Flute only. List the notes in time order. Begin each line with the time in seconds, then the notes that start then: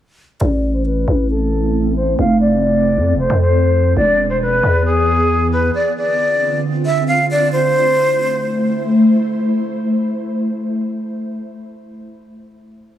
0.41 D5
0.74 C5
0.85 B4
1.30 A4
1.96 C5
2.19 F5
2.40 D5
3.19 C5
3.41 C5
3.96 D5
4.30 C5
4.42 B4
4.85 G#4
5.52 B4
5.75 D5
5.97 D5
6.86 E5
7.08 F5
7.31 D5
7.52 C5